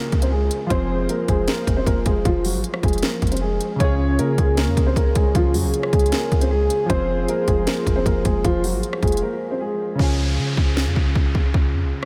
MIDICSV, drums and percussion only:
0, 0, Header, 1, 2, 480
1, 0, Start_track
1, 0, Tempo, 387097
1, 873, Time_signature, 4, 2, 24, 8
1, 14944, End_track
2, 0, Start_track
2, 0, Title_t, "Drums"
2, 152, Note_on_c, 9, 42, 48
2, 154, Note_on_c, 9, 36, 91
2, 273, Note_off_c, 9, 42, 0
2, 273, Note_on_c, 9, 42, 84
2, 278, Note_off_c, 9, 36, 0
2, 397, Note_off_c, 9, 42, 0
2, 630, Note_on_c, 9, 42, 89
2, 754, Note_off_c, 9, 42, 0
2, 873, Note_on_c, 9, 36, 121
2, 873, Note_on_c, 9, 42, 76
2, 997, Note_off_c, 9, 36, 0
2, 997, Note_off_c, 9, 42, 0
2, 1353, Note_on_c, 9, 42, 81
2, 1477, Note_off_c, 9, 42, 0
2, 1592, Note_on_c, 9, 36, 99
2, 1592, Note_on_c, 9, 42, 71
2, 1716, Note_off_c, 9, 36, 0
2, 1716, Note_off_c, 9, 42, 0
2, 1830, Note_on_c, 9, 42, 81
2, 1834, Note_on_c, 9, 38, 124
2, 1954, Note_off_c, 9, 42, 0
2, 1958, Note_off_c, 9, 38, 0
2, 2074, Note_on_c, 9, 36, 93
2, 2078, Note_on_c, 9, 42, 77
2, 2198, Note_off_c, 9, 36, 0
2, 2202, Note_off_c, 9, 42, 0
2, 2313, Note_on_c, 9, 36, 106
2, 2319, Note_on_c, 9, 42, 76
2, 2437, Note_off_c, 9, 36, 0
2, 2443, Note_off_c, 9, 42, 0
2, 2551, Note_on_c, 9, 42, 87
2, 2553, Note_on_c, 9, 36, 96
2, 2675, Note_off_c, 9, 42, 0
2, 2677, Note_off_c, 9, 36, 0
2, 2793, Note_on_c, 9, 36, 116
2, 2794, Note_on_c, 9, 42, 76
2, 2917, Note_off_c, 9, 36, 0
2, 2918, Note_off_c, 9, 42, 0
2, 3033, Note_on_c, 9, 46, 91
2, 3157, Note_off_c, 9, 46, 0
2, 3273, Note_on_c, 9, 42, 83
2, 3394, Note_on_c, 9, 37, 102
2, 3397, Note_off_c, 9, 42, 0
2, 3512, Note_on_c, 9, 36, 102
2, 3513, Note_on_c, 9, 42, 45
2, 3518, Note_off_c, 9, 37, 0
2, 3574, Note_off_c, 9, 42, 0
2, 3574, Note_on_c, 9, 42, 52
2, 3634, Note_off_c, 9, 42, 0
2, 3634, Note_on_c, 9, 42, 58
2, 3636, Note_off_c, 9, 36, 0
2, 3694, Note_off_c, 9, 42, 0
2, 3694, Note_on_c, 9, 42, 67
2, 3751, Note_off_c, 9, 42, 0
2, 3751, Note_on_c, 9, 42, 78
2, 3755, Note_on_c, 9, 38, 127
2, 3875, Note_off_c, 9, 42, 0
2, 3879, Note_off_c, 9, 38, 0
2, 3994, Note_on_c, 9, 36, 87
2, 3994, Note_on_c, 9, 42, 48
2, 4054, Note_off_c, 9, 42, 0
2, 4054, Note_on_c, 9, 42, 59
2, 4114, Note_off_c, 9, 42, 0
2, 4114, Note_on_c, 9, 42, 72
2, 4118, Note_off_c, 9, 36, 0
2, 4174, Note_off_c, 9, 42, 0
2, 4174, Note_on_c, 9, 42, 86
2, 4298, Note_off_c, 9, 42, 0
2, 4471, Note_on_c, 9, 42, 88
2, 4595, Note_off_c, 9, 42, 0
2, 4713, Note_on_c, 9, 36, 119
2, 4714, Note_on_c, 9, 42, 79
2, 4837, Note_off_c, 9, 36, 0
2, 4838, Note_off_c, 9, 42, 0
2, 5194, Note_on_c, 9, 42, 86
2, 5318, Note_off_c, 9, 42, 0
2, 5432, Note_on_c, 9, 42, 70
2, 5433, Note_on_c, 9, 36, 102
2, 5556, Note_off_c, 9, 42, 0
2, 5557, Note_off_c, 9, 36, 0
2, 5671, Note_on_c, 9, 42, 81
2, 5674, Note_on_c, 9, 38, 123
2, 5795, Note_off_c, 9, 42, 0
2, 5798, Note_off_c, 9, 38, 0
2, 5914, Note_on_c, 9, 36, 89
2, 5918, Note_on_c, 9, 42, 79
2, 6038, Note_off_c, 9, 36, 0
2, 6042, Note_off_c, 9, 42, 0
2, 6153, Note_on_c, 9, 36, 109
2, 6159, Note_on_c, 9, 42, 73
2, 6277, Note_off_c, 9, 36, 0
2, 6283, Note_off_c, 9, 42, 0
2, 6391, Note_on_c, 9, 42, 87
2, 6393, Note_on_c, 9, 36, 101
2, 6515, Note_off_c, 9, 42, 0
2, 6517, Note_off_c, 9, 36, 0
2, 6633, Note_on_c, 9, 36, 115
2, 6634, Note_on_c, 9, 42, 77
2, 6757, Note_off_c, 9, 36, 0
2, 6758, Note_off_c, 9, 42, 0
2, 6873, Note_on_c, 9, 46, 90
2, 6997, Note_off_c, 9, 46, 0
2, 7114, Note_on_c, 9, 42, 83
2, 7233, Note_on_c, 9, 37, 101
2, 7238, Note_off_c, 9, 42, 0
2, 7352, Note_on_c, 9, 36, 101
2, 7353, Note_on_c, 9, 42, 60
2, 7357, Note_off_c, 9, 37, 0
2, 7432, Note_off_c, 9, 42, 0
2, 7432, Note_on_c, 9, 42, 58
2, 7476, Note_off_c, 9, 36, 0
2, 7513, Note_off_c, 9, 42, 0
2, 7513, Note_on_c, 9, 42, 58
2, 7590, Note_off_c, 9, 42, 0
2, 7590, Note_on_c, 9, 42, 80
2, 7593, Note_on_c, 9, 38, 124
2, 7714, Note_off_c, 9, 42, 0
2, 7717, Note_off_c, 9, 38, 0
2, 7833, Note_on_c, 9, 36, 94
2, 7833, Note_on_c, 9, 42, 50
2, 7953, Note_off_c, 9, 42, 0
2, 7953, Note_on_c, 9, 42, 80
2, 7957, Note_off_c, 9, 36, 0
2, 8077, Note_off_c, 9, 42, 0
2, 8310, Note_on_c, 9, 42, 87
2, 8434, Note_off_c, 9, 42, 0
2, 8552, Note_on_c, 9, 36, 120
2, 8553, Note_on_c, 9, 42, 77
2, 8676, Note_off_c, 9, 36, 0
2, 8677, Note_off_c, 9, 42, 0
2, 9033, Note_on_c, 9, 42, 82
2, 9157, Note_off_c, 9, 42, 0
2, 9271, Note_on_c, 9, 42, 71
2, 9272, Note_on_c, 9, 36, 103
2, 9395, Note_off_c, 9, 42, 0
2, 9396, Note_off_c, 9, 36, 0
2, 9510, Note_on_c, 9, 42, 84
2, 9514, Note_on_c, 9, 38, 126
2, 9634, Note_off_c, 9, 42, 0
2, 9638, Note_off_c, 9, 38, 0
2, 9753, Note_on_c, 9, 36, 90
2, 9757, Note_on_c, 9, 42, 77
2, 9877, Note_off_c, 9, 36, 0
2, 9881, Note_off_c, 9, 42, 0
2, 9992, Note_on_c, 9, 36, 104
2, 9998, Note_on_c, 9, 42, 76
2, 10116, Note_off_c, 9, 36, 0
2, 10122, Note_off_c, 9, 42, 0
2, 10230, Note_on_c, 9, 42, 86
2, 10232, Note_on_c, 9, 36, 97
2, 10354, Note_off_c, 9, 42, 0
2, 10356, Note_off_c, 9, 36, 0
2, 10472, Note_on_c, 9, 36, 118
2, 10473, Note_on_c, 9, 42, 75
2, 10596, Note_off_c, 9, 36, 0
2, 10597, Note_off_c, 9, 42, 0
2, 10712, Note_on_c, 9, 46, 92
2, 10836, Note_off_c, 9, 46, 0
2, 10953, Note_on_c, 9, 42, 84
2, 11073, Note_on_c, 9, 37, 101
2, 11077, Note_off_c, 9, 42, 0
2, 11192, Note_on_c, 9, 36, 101
2, 11192, Note_on_c, 9, 42, 44
2, 11197, Note_off_c, 9, 37, 0
2, 11252, Note_off_c, 9, 42, 0
2, 11252, Note_on_c, 9, 42, 54
2, 11312, Note_off_c, 9, 42, 0
2, 11312, Note_on_c, 9, 42, 59
2, 11316, Note_off_c, 9, 36, 0
2, 11372, Note_off_c, 9, 42, 0
2, 11372, Note_on_c, 9, 42, 70
2, 11496, Note_off_c, 9, 42, 0
2, 12392, Note_on_c, 9, 36, 114
2, 12516, Note_off_c, 9, 36, 0
2, 13112, Note_on_c, 9, 36, 96
2, 13236, Note_off_c, 9, 36, 0
2, 13353, Note_on_c, 9, 38, 114
2, 13477, Note_off_c, 9, 38, 0
2, 13593, Note_on_c, 9, 36, 83
2, 13717, Note_off_c, 9, 36, 0
2, 13832, Note_on_c, 9, 36, 105
2, 13956, Note_off_c, 9, 36, 0
2, 14072, Note_on_c, 9, 36, 97
2, 14196, Note_off_c, 9, 36, 0
2, 14312, Note_on_c, 9, 36, 115
2, 14436, Note_off_c, 9, 36, 0
2, 14944, End_track
0, 0, End_of_file